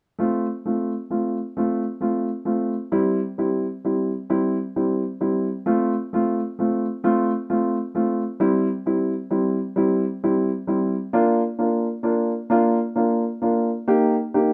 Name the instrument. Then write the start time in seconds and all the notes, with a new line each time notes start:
grand piano
0.19 A3 C4 F4
0.65 A3 C4 F4
1.10 A3 C4 F4
1.57 A3 C4 F4
2.01 A3 C4 F4
2.45 A3 C4 F4
2.92 G3 C4 E4
3.38 G3 C4 E4
3.85 G3 C4 E4
4.30 G3 C4 E4
4.76 G3 C4 E4
5.21 G3 C4 E4
5.66 A3 C4 F4
6.13 A3 C4 F4
6.59 A3 C4 F4
7.04 A3 C4 F4
7.50 A3 C4 F4
7.95 A3 C4 F4
8.40 G3 C4 E4
8.86 G3 C4 E4
9.31 G3 C4 E4
9.76 G3 C4 E4
10.24 G3 C4 E4
10.67 G3 C4 E4
11.13 A#3 D4 F4
11.59 A#3 D4 F4
12.03 A#3 D4 F4
12.50 A#3 D4 F4
12.96 A#3 D4 F4
13.42 A#3 D4 F4
13.88 A#3 D#4 G4
14.34 A#3 D#4 G4